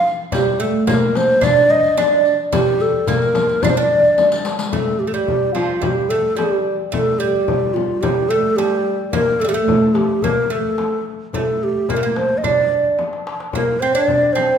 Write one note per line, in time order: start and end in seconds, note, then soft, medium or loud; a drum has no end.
0.07 riq soft
0.32 0.59 G3 medium
0.32 0.62 G4 medium
0.32 riq medium
0.32 frame drum medium
0.32 darbuka dum medium
0.60 0.87 A3 medium
0.60 0.88 A4 medium
0.87 1.44 A#3 medium
0.87 1.18 A#4 medium
0.87 riq medium
0.87 frame drum medium
0.87 darbuka dum loud
1.15 1.45 C5 medium
1.15 riq soft
1.15 darbuka tek medium
1.15 frame drum medium
1.30 riq soft
1.41 1.96 D4 medium
1.41 1.72 D5 loud
1.41 riq medium
1.41 darbuka dum medium
1.41 frame drum medium
1.56 riq soft
1.56 darbuka ka soft
1.71 2.00 D#5 loud
1.84 riq soft
1.84 darbuka ka soft
1.97 2.36 D4 medium
1.97 2.39 D5 medium
1.97 riq soft
1.97 darbuka tek medium
1.97 frame drum medium
2.25 riq soft
2.52 3.08 G3 medium
2.52 2.83 G4 medium
2.52 riq medium
2.52 darbuka dum medium
2.52 frame drum medium
2.80 3.10 A4 medium
2.80 riq soft
2.80 darbuka ka soft
3.07 3.64 A#3 medium
3.07 3.64 A#4 medium
3.07 riq medium
3.07 darbuka dum loud
3.07 frame drum medium
3.22 riq soft
3.22 darbuka ka soft
3.35 riq soft
3.35 darbuka tek medium
3.35 frame drum medium
3.49 riq soft
3.49 darbuka ka soft
3.63 3.76 D4 medium
3.63 3.71 D5 medium
3.63 riq medium
3.63 frame drum medium
3.63 darbuka dum medium
3.70 3.79 C5 medium
3.77 4.41 D4 medium
3.77 4.46 D5 medium
3.77 darbuka ka soft
4.04 riq soft
4.04 darbuka ka soft
4.18 riq soft
4.18 darbuka tek soft
4.18 frame drum medium
4.32 riq medium
4.32 darbuka ka medium
4.45 riq medium
4.45 darbuka tek medium
4.59 riq medium
4.59 darbuka ka medium
4.73 5.06 A3 medium
4.73 5.01 A4 medium
4.73 frame drum medium
4.73 darbuka dum medium
4.99 5.09 G4 medium
4.99 darbuka ka soft
5.07 5.13 A3 soft
5.07 5.15 A4 medium
5.13 5.56 G3 medium
5.13 5.54 G4 medium
5.28 frame drum medium
5.28 darbuka dum medium
5.43 darbuka ka soft
5.55 5.83 F3 medium
5.55 5.83 F4 medium
5.55 darbuka tek medium
5.55 frame drum medium
5.81 6.10 G3 medium
5.81 6.11 G4 medium
5.81 frame drum medium
5.81 darbuka dum medium
5.97 darbuka ka soft
6.09 6.36 A3 medium
6.09 6.38 A4 medium
6.36 6.75 G3 medium
6.36 6.78 G4 medium
6.36 darbuka tek medium
6.36 frame drum medium
6.92 7.20 A3 medium
6.92 7.20 A4 medium
6.92 frame drum medium
6.92 darbuka dum medium
7.19 8.01 G3 medium
7.19 7.75 G4 medium
7.19 darbuka ka soft
7.48 frame drum medium
7.48 darbuka dum medium
7.62 darbuka ka soft
7.74 8.03 F4 medium
7.74 frame drum medium
8.01 8.28 G3 medium
8.01 8.31 G4 medium
8.01 frame drum medium
8.01 darbuka dum medium
8.17 darbuka ka soft
8.29 8.58 A3 medium
8.29 8.58 A4 medium
8.56 8.97 G3 medium
8.56 8.99 G4 medium
8.56 darbuka tek medium
8.56 frame drum medium
9.11 9.41 A#3 medium
9.11 9.42 A#4 loud
9.11 frame drum medium
9.11 darbuka dum medium
9.40 9.44 A3 medium
9.40 9.50 A4 medium
9.40 darbuka ka soft
9.44 9.48 G3 medium
9.44 9.55 G4 medium
9.49 9.53 A3 medium
9.54 10.23 A3 medium
9.54 9.96 A4 medium
9.67 darbuka dum medium
9.67 frame drum medium
9.81 darbuka ka soft
9.95 10.24 G4 medium
9.95 darbuka tek medium
9.95 frame drum medium
10.22 10.50 A#3 medium
10.22 10.53 A#4 medium
10.22 darbuka dum medium
10.22 frame drum medium
10.37 darbuka ka soft
10.50 11.02 A3 medium
10.50 11.07 A4 medium
10.78 darbuka tek medium
10.78 frame drum medium
11.33 11.89 A3 medium
11.33 darbuka dum medium
11.33 frame drum medium
11.38 11.65 A4 medium
11.61 11.91 G4 medium
11.61 darbuka ka soft
11.89 11.96 A#3 medium
11.89 12.18 A#4 medium
11.89 darbuka dum medium
11.89 frame drum medium
11.96 12.03 A3 medium
12.03 12.45 A#3 medium
12.03 darbuka ka soft
12.16 12.39 C5 medium
12.16 darbuka tek medium
12.16 frame drum medium
12.30 darbuka ka soft
12.38 12.45 D#5 medium
12.43 12.95 D4 medium
12.43 12.99 D5 medium
12.43 frame drum medium
12.43 darbuka dum medium
12.57 darbuka ka soft
12.85 darbuka ka soft
12.99 darbuka tek soft
12.99 frame drum medium
13.13 darbuka ka medium
13.27 darbuka tek medium
13.40 darbuka ka medium
13.53 13.83 A#3 medium
13.53 13.81 A#4 medium
13.53 frame drum medium
13.53 darbuka dum medium
13.80 13.94 C4 medium
13.80 13.94 C5 medium
13.80 darbuka ka soft
13.93 14.35 D4 medium
13.93 14.34 D5 medium
14.08 darbuka dum medium
14.08 frame drum medium
14.22 darbuka ka soft
14.33 14.58 C4 medium
14.33 14.58 C5 medium
14.33 darbuka tek medium
14.33 frame drum medium